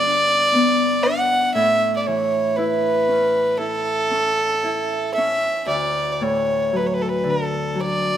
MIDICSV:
0, 0, Header, 1, 3, 480
1, 0, Start_track
1, 0, Key_signature, 2, "major"
1, 0, Tempo, 1016949
1, 722, Time_signature, 4, 2, 24, 8
1, 1686, Tempo, 1045296
1, 3799, End_track
2, 0, Start_track
2, 0, Title_t, "Fiddle"
2, 0, Program_c, 0, 110
2, 0, Note_on_c, 0, 74, 108
2, 486, Note_on_c, 0, 78, 92
2, 493, Note_off_c, 0, 74, 0
2, 723, Note_off_c, 0, 78, 0
2, 729, Note_on_c, 0, 76, 94
2, 918, Note_off_c, 0, 76, 0
2, 929, Note_on_c, 0, 74, 60
2, 975, Note_on_c, 0, 73, 75
2, 982, Note_off_c, 0, 74, 0
2, 1210, Note_on_c, 0, 71, 79
2, 1217, Note_off_c, 0, 73, 0
2, 1690, Note_on_c, 0, 69, 96
2, 1697, Note_off_c, 0, 71, 0
2, 2406, Note_off_c, 0, 69, 0
2, 2408, Note_on_c, 0, 76, 82
2, 2634, Note_off_c, 0, 76, 0
2, 2657, Note_on_c, 0, 74, 75
2, 2857, Note_off_c, 0, 74, 0
2, 2857, Note_on_c, 0, 74, 61
2, 2906, Note_on_c, 0, 73, 68
2, 2913, Note_off_c, 0, 74, 0
2, 3152, Note_on_c, 0, 71, 70
2, 3159, Note_off_c, 0, 73, 0
2, 3200, Note_on_c, 0, 73, 44
2, 3206, Note_off_c, 0, 71, 0
2, 3232, Note_on_c, 0, 71, 71
2, 3239, Note_off_c, 0, 73, 0
2, 3269, Note_on_c, 0, 69, 48
2, 3276, Note_off_c, 0, 71, 0
2, 3302, Note_on_c, 0, 71, 68
2, 3309, Note_off_c, 0, 69, 0
2, 3396, Note_on_c, 0, 69, 71
2, 3403, Note_off_c, 0, 71, 0
2, 3629, Note_on_c, 0, 74, 96
2, 3636, Note_off_c, 0, 69, 0
2, 3799, Note_off_c, 0, 74, 0
2, 3799, End_track
3, 0, Start_track
3, 0, Title_t, "Harp"
3, 0, Program_c, 1, 46
3, 0, Note_on_c, 1, 43, 61
3, 0, Note_on_c, 1, 50, 50
3, 0, Note_on_c, 1, 55, 52
3, 0, Note_on_c, 1, 59, 47
3, 18, Note_on_c, 1, 62, 46
3, 255, Note_off_c, 1, 59, 0
3, 257, Note_on_c, 1, 59, 49
3, 489, Note_off_c, 1, 62, 0
3, 491, Note_on_c, 1, 62, 50
3, 682, Note_off_c, 1, 43, 0
3, 732, Note_on_c, 1, 45, 56
3, 745, Note_off_c, 1, 50, 0
3, 745, Note_off_c, 1, 55, 0
3, 980, Note_on_c, 1, 52, 47
3, 1218, Note_on_c, 1, 64, 54
3, 1455, Note_on_c, 1, 61, 44
3, 1484, Note_off_c, 1, 62, 0
3, 1691, Note_off_c, 1, 64, 0
3, 1693, Note_on_c, 1, 64, 39
3, 1722, Note_off_c, 1, 59, 0
3, 1931, Note_off_c, 1, 61, 0
3, 1933, Note_on_c, 1, 61, 38
3, 2174, Note_off_c, 1, 64, 0
3, 2175, Note_on_c, 1, 64, 47
3, 2421, Note_off_c, 1, 61, 0
3, 2423, Note_on_c, 1, 61, 50
3, 2549, Note_off_c, 1, 45, 0
3, 2647, Note_on_c, 1, 38, 51
3, 2674, Note_off_c, 1, 61, 0
3, 2675, Note_off_c, 1, 52, 0
3, 2897, Note_on_c, 1, 45, 47
3, 3134, Note_on_c, 1, 54, 45
3, 3368, Note_on_c, 1, 50, 43
3, 3375, Note_off_c, 1, 64, 0
3, 3397, Note_off_c, 1, 45, 0
3, 3397, Note_off_c, 1, 54, 0
3, 3605, Note_on_c, 1, 54, 45
3, 3799, Note_off_c, 1, 38, 0
3, 3799, Note_off_c, 1, 50, 0
3, 3799, Note_off_c, 1, 54, 0
3, 3799, End_track
0, 0, End_of_file